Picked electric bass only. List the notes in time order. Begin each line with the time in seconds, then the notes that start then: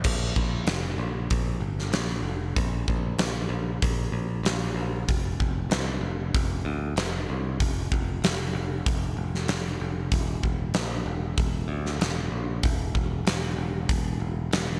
0.05 A#1
0.36 A#1
0.67 F1
0.98 A#1
1.31 A#1
1.60 G1
1.92 A#1
2.23 F1
2.57 A#1
2.88 A#1
3.19 A#1
3.49 A#1
3.82 A#1
4.12 A#1
4.43 A#1
4.74 A#1
5.08 F1
5.40 F1
5.70 C2
6.01 F1
6.34 F1
6.65 D2
6.96 F1
7.29 C2
7.60 F1
7.92 F1
8.22 F1
8.53 F1
8.86 F1
9.17 F1
9.48 F1
9.80 F1
10.12 E1
10.43 E1
10.74 A#1
11.06 E1
11.38 E1
11.68 D2
11.99 E1
12.31 A#1
12.64 E1
12.94 E1
13.25 E1
13.56 E1
13.89 E1
14.20 E1
14.51 E1